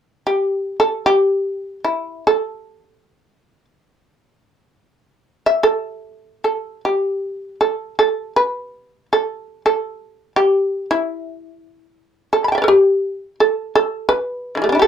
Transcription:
shamisen
0.27 G4
0.80 A4
1.06 G4
1.84 E4
2.27 A4
5.46 E5
5.63 A4
6.44 A4
6.85 G4
7.61 A4
7.99 A4
8.36 B4
9.13 A4
9.66 A4
10.36 G4
10.91 E4
12.33 A4
12.44 A5 B5
12.52 E5 G5
12.58 D5
12.62 A4 B4
12.68 G4
13.40 A4
13.75 A4
14.09 B4
14.55 D3 E3
14.62 G3 A3
14.69 B3 D4
14.75 E4
14.79 G4 A4

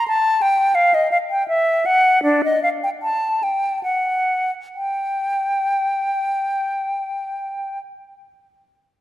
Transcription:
flute
0.08 A5
0.42 G5
0.75 F5
0.94 D#5
1.12 F5
1.30 G5
1.48 E5
1.86 F#5
2.23 D4
2.44 D#5
2.63 F5
2.83 G5
3.03 A5
3.43 G5
3.83 F#5
4.75 G5

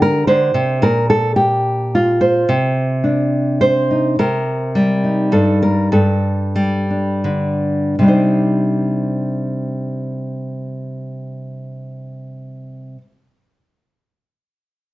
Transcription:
nylon-string guitar
Already playing: D3 D4
0.02 A#4
0.27 D3 C5
0.54 C3
0.82 A#2 A#4
1.10 A4
1.36 G4
1.95 F4
2.21 C5
2.49 C3
3.04 D4
3.61 C5
3.91 D#4
4.19 C3 A#4
4.75 G3
5.04 D#4
5.32 G2 A4
5.62 A#4
5.92 G2 A4
6.56 G3
6.90 D4
7.24 D3
7.99 C3 G3
8.03 D4 D#4
8.08 C5

